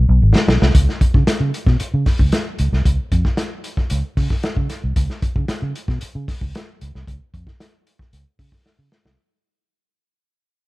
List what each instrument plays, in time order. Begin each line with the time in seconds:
0.09 fingered electric bass B1
0.22 fingered electric bass G#1
0.35 snare
0.48 fingered electric bass B1, snare
0.62 fingered electric bass C2, snare
0.75 fingered electric bass C#2, kick, closed hi-hat
0.89 snare
1.01 muted fingered electric bass stroke, kick, closed hi-hat
1.14 fingered electric bass C#3, kick
1.27 muted fingered electric bass stroke, snare, closed hi-hat
1.40 fingered electric bass C#3
1.54 closed hi-hat
1.67 fingered electric bass B2, kick, snare
1.80 muted fingered electric bass stroke, closed hi-hat
1.94 fingered electric bass C#3
2.06 kick, snare, open hi-hat
2.19 fingered electric bass C#2, kick
2.32 snare, closed hi-hat
2.58 fingered electric bass C#2, closed hi-hat
2.72 fingered electric bass C2, snare
2.85 fingered electric bass C#2, kick, closed hi-hat
3.12 fingered electric bass F2, kick, closed hi-hat
3.25 kick, snare
3.37 snare, closed hi-hat
3.64 closed hi-hat
3.77 kick, snare
3.90 fingered electric bass C#2, closed hi-hat
4.17 fingered electric bass C#3, kick, open hi-hat
4.30 kick, snare
4.43 snare, closed hi-hat
4.57 fingered electric bass C#3, kick
4.69 snare, closed hi-hat
4.84 fingered electric bass C2
4.96 fingered electric bass C#2, kick, closed hi-hat
5.10 snare
5.22 muted fingered electric bass stroke, kick, closed hi-hat
5.36 fingered electric bass C#3, kick
5.48 muted fingered electric bass stroke, snare, closed hi-hat
5.62 fingered electric bass C#3
5.75 closed hi-hat
5.88 fingered electric bass B2, kick, snare
6.01 muted fingered electric bass stroke, closed hi-hat
6.15 fingered electric bass C#3
6.28 kick, snare, open hi-hat
6.41 fingered electric bass C#2, kick
6.55 snare, closed hi-hat
6.81 fingered electric bass C#2, closed hi-hat
6.95 fingered electric bass C2, snare
7.07 fingered electric bass C#2, kick, closed hi-hat
7.34 fingered electric bass F2, kick, closed hi-hat
7.47 kick, snare
7.60 snare, closed hi-hat
7.87 closed hi-hat
7.99 kick, snare
8.13 fingered electric bass C#2, closed hi-hat
8.39 fingered electric bass C#3, kick, open hi-hat
8.52 kick, snare
8.66 snare
8.79 fingered electric bass C#3
8.92 snare
9.05 fingered electric bass C2, snare